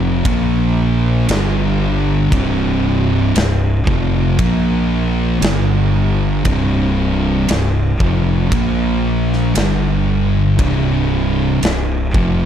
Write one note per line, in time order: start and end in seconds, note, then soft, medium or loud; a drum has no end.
0.00 0.21 F1 loud
0.00 0.23 F2 loud
0.00 0.23 C3 loud
0.00 0.24 F3 loud
0.25 1.24 A#1 medium
0.25 1.27 A#2 loud
0.25 1.27 F3 loud
0.25 1.27 A#3 loud
0.25 kick loud
0.25 ride bell medium
1.28 2.28 G1 loud
1.28 2.30 G2 loud
1.28 2.30 D3 loud
1.28 2.30 G3 loud
1.28 snare loud
1.28 ride bell medium
2.31 3.32 C1 loud
2.31 3.33 C2 loud
2.31 3.34 G2 loud
2.31 3.34 C3 loud
2.31 kick loud
2.31 ride bell medium
3.35 3.83 C1 medium
3.35 3.77 C2 medium
3.35 3.77 G2 medium
3.35 snare loud
3.35 ride bell medium
3.87 4.35 F1 medium
3.87 4.37 F2 loud
3.87 4.37 C3 loud
3.87 4.38 F3 loud
3.87 kick loud
4.38 5.38 A#1 loud
4.38 5.41 A#2 loud
4.38 5.41 F3 loud
4.38 5.42 A#3 loud
4.38 kick loud
4.38 ride bell medium
5.41 6.41 G1 loud
5.41 6.43 G2 loud
5.41 6.44 D3 loud
5.41 6.44 G3 loud
5.41 snare loud
5.41 ride bell medium
6.45 7.45 C1 loud
6.45 7.47 C2 loud
6.45 7.47 G2 loud
6.45 7.48 C3 loud
6.45 kick loud
6.45 ride bell medium
7.49 7.97 C1 medium
7.49 7.90 C2 medium
7.49 7.91 G2 medium
7.49 snare loud
7.49 ride bell medium
8.00 8.49 F1 medium
8.00 8.51 F2 loud
8.00 8.51 C3 loud
8.00 8.52 F3 loud
8.00 kick loud
8.52 9.52 A#1 loud
8.52 9.56 A#2 medium
8.52 9.56 F3 loud
8.52 9.57 A#3 loud
8.52 kick loud
8.52 ride bell medium
9.33 snare soft
9.55 10.56 G1 loud
9.55 10.57 G2 loud
9.55 10.58 D3 loud
9.55 10.58 G3 loud
9.55 snare loud
9.55 ride bell medium
10.58 11.59 C1 loud
10.58 11.61 C2 loud
10.58 11.61 G2 loud
10.58 11.61 C3 loud
10.58 kick loud
10.58 ride bell medium
11.62 12.11 C1 medium
11.62 12.04 C2 medium
11.62 12.05 G2 medium
11.62 snare loud
11.62 ride bell medium
12.14 12.46 F1 medium
12.14 12.46 F2 loud
12.14 12.46 C3 loud
12.14 12.46 F3 loud
12.14 kick loud